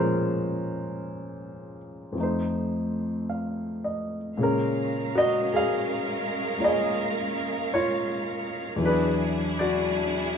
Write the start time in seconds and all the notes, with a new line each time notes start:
Already playing: A#2 F3 G#3 C#4 F4 A#4 C5
2.12 F2 F3
2.18 A3 D#4
2.23 C5
3.29 F5
3.84 D#5
4.37 A#2 C#3 G#3 C#4 A#4 F5
4.43 A#4
5.15 F#4 D#5
5.54 G#4 F5
6.57 G#3 A#3 F4 C#5
6.64 G#4 D#5
7.74 F4 C#5
8.76 E2 E3
8.81 F#3 D4 E4 G#4
8.85 D4 G#4 B4
9.59 F#4 D5